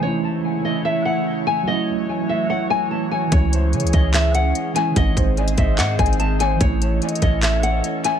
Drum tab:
HH |------------------------------------------------|------------------------------------------------|x-----x-----x-x-x-x-----x-----x-----x-----x-----|x-----x-----x--x--x-----x-----x-x-x-x-----x-----|
CP |------------------------------------------------|------------------------------------------------|------------------------x-----------------------|------------------------x-----------------------|
SD |------------------------------------------------|------------------------------------------------|------------------------------------------------|------------------------------r-----------------|
BD |------------------------------------------------|------------------------------------------------|o-----------------o-----------------------------|o-----o-----------o-----------o-----------------|

HH |x-----x-----x-x-x-x-----x-----x-----x-----x-----|
CP |------------------------x-----------------------|
SD |------------------------------------------------|
BD |o-----------------o-----------------------------|